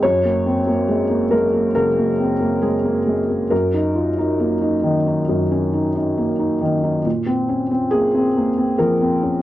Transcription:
0.03 F#2 C#5
0.24 A#3
0.46 C4
0.67 A#3
0.89 G#3
1.10 A#3
1.31 G#3 A#4
1.54 A#3
1.75 C#3 A#4
1.97 A#3
2.19 C4
2.40 A#3
2.61 G#3 G#4
2.84 A#3
3.06 G#3
3.29 A#3
3.50 F#2 A#4
3.74 D#4
3.95 F4
4.18 D#4
4.39 A#3
4.61 D#4
4.83 D#3
5.07 D#4
5.29 F#2
5.51 C#4
5.73 D#4
5.95 D#4
6.18 A#3
6.39 D#4
6.62 D#3
6.84 D#4
7.05 A#2
7.26 C4
7.49 C#4
7.71 C4
7.91 A#3 G#4
8.14 C4
8.36 A#3
8.58 C4
8.78 F3 A#4
9.01 C4
9.23 C#4

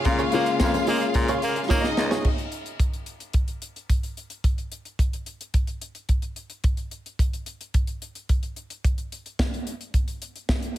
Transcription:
Already playing: C#3 G#3 A#3 F4 G#4 F5
0.05 A#2 C#3 G#3 A#3 C#4, muted clean electric guitar stroke, kick, closed hi-hat, tambourine
0.19 F4 G#4 C#5, closed hi-hat
0.32 C#3 G#3 A#3 F4 G#4 C#5, closed hi-hat, tambourine
0.46 muted clean electric guitar stroke, closed hi-hat, tambourine
0.60 F2, kick, snare, tambourine
0.74 muted clean electric guitar stroke, closed hi-hat, tambourine
0.87 A#3 F4 G#4 D#5, open hi-hat, tambourine
1.01 muted clean electric guitar stroke, closed hi-hat, tambourine
1.14 A#2, muted clean electric guitar stroke, kick, closed hi-hat, tambourine
1.28 F4 G#4 C#5, closed hi-hat
1.42 A#3, muted clean electric guitar stroke, closed hi-hat, tambourine
1.56 muted clean electric guitar stroke, closed hi-hat
1.69 A#3 D#4 F4 G#4 C#5 D#5, kick, snare, tambourine
1.84 muted clean electric guitar stroke, snare
1.97 C#2, muted clean electric guitar stroke, snare
2.11 F4 G#4 C#5, snare
2.24 kick, crash
2.38 closed hi-hat
2.52 closed hi-hat
2.66 closed hi-hat
2.79 kick, closed hi-hat
2.93 closed hi-hat
3.06 closed hi-hat
3.20 closed hi-hat
3.33 kick, closed hi-hat
3.48 closed hi-hat
3.62 closed hi-hat
3.76 closed hi-hat
3.90 kick, closed hi-hat
4.03 closed hi-hat
4.17 closed hi-hat
4.30 closed hi-hat
4.44 kick, closed hi-hat
4.58 closed hi-hat
4.72 closed hi-hat
4.85 closed hi-hat
4.99 kick, closed hi-hat
5.13 closed hi-hat
5.26 closed hi-hat
5.41 closed hi-hat
5.54 kick, closed hi-hat
5.67 closed hi-hat
5.81 closed hi-hat
5.95 closed hi-hat
6.09 kick, closed hi-hat
6.22 closed hi-hat
6.36 closed hi-hat
6.50 closed hi-hat
6.64 kick, closed hi-hat
6.77 closed hi-hat
6.91 closed hi-hat
7.06 closed hi-hat
7.19 kick, closed hi-hat
7.33 closed hi-hat
7.46 closed hi-hat
7.61 closed hi-hat
7.74 kick, closed hi-hat
7.87 closed hi-hat
8.02 closed hi-hat
8.15 closed hi-hat
8.29 kick, closed hi-hat
8.43 closed hi-hat
8.56 closed hi-hat
8.70 closed hi-hat
8.85 kick, closed hi-hat
8.98 closed hi-hat
9.12 closed hi-hat
9.26 closed hi-hat
9.39 kick, snare
9.54 closed hi-hat
9.67 closed hi-hat
9.81 closed hi-hat
9.94 kick, closed hi-hat
10.08 closed hi-hat
10.22 closed hi-hat
10.36 closed hi-hat
10.49 kick, snare
10.62 closed hi-hat

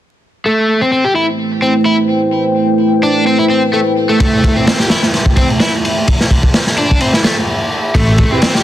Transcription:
0.45 A3 E4 B4 C5 G5
0.81 C4
0.92 C4
1.05 G4
1.15 E4
1.62 C4
1.85 E4
3.03 D4
3.27 C4
3.39 E4
3.50 C4
3.73 A3
4.09 A3
4.20 A3, kick, ride
4.44 kick, ride
4.56 C4
4.67 C4, snare, ride
4.79 G4, snare
4.90 E4, snare, ride
5.03 snare
5.14 snare, ride
5.26 kick
5.37 C4, kick, ride
5.50 ride
5.60 E4, snare, ride
5.85 ride
6.08 kick, ride
6.21 snare
6.31 kick, ride
6.43 kick
6.54 snare, ride
6.67 snare
6.77 D4, ride
6.91 kick
7.01 C4, ride
7.13 E4, snare
7.24 A3, snare, ride
7.95 A1 A3 E4, kick, ride
8.18 kick, ride
8.31 C4 E4 G4 B4
8.42 C4, snare, ride
8.54 G4, snare

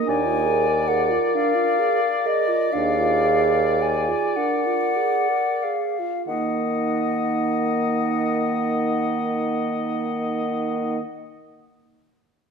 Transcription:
Already playing: A#4
0.06 D#2 D4 D5 G#5
0.26 F4
0.45 G#4
0.68 A#4
0.88 G#4 F#5
1.11 F4
1.34 D4 F5
1.55 F4
1.79 G#4
2.02 A#4
2.26 G#4 D#5
2.48 F4
2.73 D#2 D4 G#4 F5
2.99 F4
3.25 G#4
3.54 A#4
3.80 G#4 G#5
4.08 F4
4.36 D4 A#4 F#5
4.66 F4
4.97 G#4
5.29 A#4
5.63 G#4 F5
5.99 F4
6.26 D#3 A#3 D#5 F#5
6.31 D#4

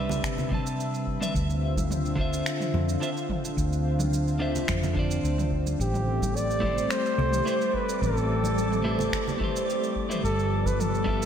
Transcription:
Already playing: C2 C3 G3 C4 D4 B4 E5
0.09 low conga, shaker
0.23 finger snap, kick, shaker
0.38 low conga, shaker
0.49 C3 C4 D4, kick, mid tom
0.53 B4 A5
0.67 shaker
0.80 shaker
0.94 shaker
1.07 kick
1.20 C3 C4 D4 B4 E5, mid tom, shaker
1.35 D2 D3 C4 F4, kick, shaker
1.50 shaker
1.77 kick, high conga, shaker
1.91 mid tom, shaker
2.06 shaker
2.16 D3 D4 F4, kick
2.20 C5 E5
2.33 shaker
2.46 finger snap, shaker
2.60 mid tom, shaker
2.74 F2, low conga
2.89 shaker
3.00 D3 D4 F4 C5 E5, shaker
3.17 shaker
3.29 kick, mid tom
3.45 shaker
3.57 D2, kick, shaker
3.73 shaker
3.99 mid tom, high conga, shaker
4.13 shaker
4.28 shaker
4.39 D3 D4 F4 C5 E5
4.55 low conga, shaker
4.68 F2, finger snap, kick, mid tom, shaker
4.83 low conga, shaker
4.93 D3 D4 F4 C5, kick
4.99 D5
5.11 shaker
5.23 D2, shaker
5.38 mid tom, shaker
5.52 kick
5.66 high conga, shaker
5.79 A1 G3 A3 G4 D5 D6, kick, shaker
5.94 mid tom, shaker
6.21 kick, high conga, shaker
6.36 D5, shaker
6.51 shaker
6.60 A3 E4 G4, kick, mid tom
6.64 A4 C5
6.78 shaker
6.90 C5, finger snap, shaker
7.06 shaker
7.18 C2, low conga
7.32 mid tom, shaker
7.45 A3 E4 G4 B4 C5, shaker
7.61 shaker
7.74 B4, kick
7.89 shaker
8.02 A1 A4, kick, mid tom, shaker
8.17 shaker
8.44 high conga, shaker
8.58 shaker
8.72 mid tom, shaker
8.84 A3 E4 G4 B4 C5
8.99 low conga, shaker
9.13 finger snap, kick, shaker
9.28 low conga, shaker
9.38 A3 E4 G4 B4, kick, mid tom
9.44 C5
9.56 shaker
9.70 shaker
9.84 shaker
9.96 kick
10.09 A3 E4 G4 B4 C5, mid tom, shaker
10.24 G1 F3 B3 A4, kick, shaker
10.39 shaker
10.66 B4, kick, high conga, shaker
10.80 A4, mid tom, shaker
10.95 shaker
11.04 G3 D4 E4 F4, kick
11.09 A4 B4

